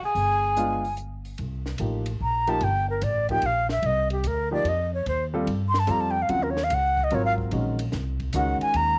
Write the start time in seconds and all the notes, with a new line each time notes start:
0.02 G#4 G#5, muted upright bass stroke
0.15 G1, open hi-hat
0.57 G#3 B3 D4 F4, closed hi-hat
0.84 open hi-hat
0.97 closed hi-hat
1.25 open hi-hat
1.38 C2, ride
1.66 snare
1.78 A1 F3 A#3 D#4 G4, hi-hat pedal, ride
2.06 ride
2.20 A#1 A#5
2.47 F3 A#3 D#4 G4 A5, ride
2.61 G1 G5, ride
2.90 A#4
3.01 A1 D5, hi-hat pedal, ride
3.29 F3 A#3 D#4 G4 G5, kick, ride
3.42 A#1, ride
3.46 F5
3.69 E5, snare
3.83 C2 D#5, ride
4.10 G4, ride
4.24 D2 A#4, hi-hat pedal, ride
4.51 F3 A#3 D#4 G4 D5
4.64 F2, ride
4.68 D#5
4.94 C#5
5.06 D#2 C5, ride
5.34 G3 C4 F4 A4
5.47 G2, ride
5.69 C6
5.74 snare
5.79 A5
5.87 F2 G3 C4 F4 A4, hi-hat pedal, ride
5.91 A#5
6.00 A5
6.11 G5
6.22 F5
6.29 D#2 C#3 F#3 C4 F4 F#5, ride
6.43 A#4
6.50 C#5
6.57 snare
6.64 F5
6.70 C#2, hi-hat pedal, ride
6.74 F#5
6.97 kick
7.04 D#5
7.10 G#1 F#3 C4 F4 A#4, ride
7.15 C#5
7.25 F5
7.38 kick
7.51 A#1 D#3 G#3 C#4 F#4, ride
7.79 ride
7.92 C2, snare, hi-hat pedal
8.20 kick, ride
8.33 C#2 D#3 G#3 C#4 F#4 F#5, hi-hat pedal, ride
8.61 G#5, muted upright bass stroke, ride
8.74 D#2 A#5, ride